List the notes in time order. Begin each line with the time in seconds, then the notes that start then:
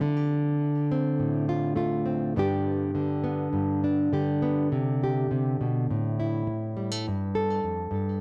0.01 D3
0.91 C4
1.19 A2
1.49 F4
1.76 A3 F4
2.06 C4
2.36 G2 D3 B3 D4 G4
2.95 D3
3.24 B3
3.53 G2
3.84 D4
4.13 D3 G4
4.42 B3
4.72 C3
5.03 G4
5.31 C3
5.61 B2
5.90 A2
6.20 E4
6.47 muted nylon-string guitar stroke
6.77 G3
6.92 A3
7.08 G2
7.35 A4
7.64 F2
7.91 G2